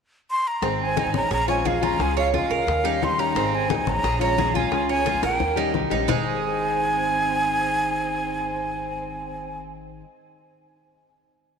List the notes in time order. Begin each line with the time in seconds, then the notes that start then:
0.31 C6
0.47 A#5
0.62 G#1 D#3 G#3 C4 D#4 G#4, high bongo, high conga
0.80 C4 G#5, high conga
0.96 G#3 C4 D#4 G#4, high bongo, high conga
1.05 G#1
1.13 A1 C#4 A#5, high bongo, high conga
1.31 A#1 C#4 G#4 A#5, muted nylon-string guitar stroke, high bongo, high conga
1.48 G#3 C4 C#4 F4 C#5 G#5, high bongo, high conga
1.65 F3 G#3 C#4 F4 G#4 F5, high bongo, low bongo, high conga
1.81 G#3 C#4 F4 A#5, high conga
1.99 C#2 C#3 G#3 C#4 F4 G#4 G#5, high bongo
2.17 G#3 C#5 F5, high conga
2.33 G#3 C#4 F4 G#4 F5, high bongo, high conga
2.42 C#2
2.50 C#2 A#4, high bongo, high conga
2.67 D#2, muted nylon-string guitar stroke, high bongo, high conga
2.84 G3 C#4 D#4 G4, high bongo, high conga
3.01 D#3 G3 C#4 D#4 G4 C6, high bongo, low bongo, high conga
3.18 G3 C#4 D#4 G4 A#5
3.35 G#1 D#3 G#3 C4 D#4 G#4, high bongo, high conga
3.53 C4 G#5, high conga
3.69 G#3 C4 D#4 G#4, high bongo, high conga
3.78 G#1
3.86 A1 C#4 A#5, high bongo, high conga
4.04 A#1 G#4, muted nylon-string guitar stroke, high bongo, high conga
4.20 G#3 C#4 F4 C#5 A#5, high bongo, high conga
4.37 F3 G#3 C#4 F4 G#4, high bongo, low bongo, high conga
4.54 G#3 C#4 F4 G#5, high conga
4.71 C#2 C#3 G#3 C#4 F4 G#4, high bongo, high conga
4.89 C#4 C#5 G#5, high conga
5.05 G#3 C#4 F4 G#4, high bongo, high conga
5.14 C#2
5.23 A#1 A#3 A#4 G5, high bongo, high conga
5.40 D#2, muted nylon-string guitar stroke, low bongo, high conga
5.56 G3 C#4 D#4 G4, high conga
5.73 C2 D#3 G3 C#4 G4, low bongo, high conga
5.90 A#1 G3 C#4 D#4 G4, low bongo, high conga
6.07 G#1 G#2 D#3 G#3 C4 D#4 G#4 G#5, low bongo, low conga